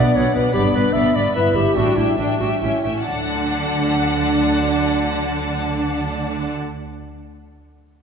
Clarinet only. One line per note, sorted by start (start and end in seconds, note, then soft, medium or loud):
0.00 0.17 D5 medium
0.15 0.34 C#5 medium
0.35 0.53 B4 medium
0.54 0.63 G4 medium
0.74 0.94 B4 medium
0.93 1.17 E5 medium
1.15 1.35 D5 medium
1.35 1.57 B4 medium
1.55 1.77 G4 medium
1.76 1.98 F#4 medium
1.97 2.18 E4 medium
2.18 2.39 D4 medium
2.40 2.50 F#4 medium
2.61 3.05 E4 soft
3.05 6.51 D4 medium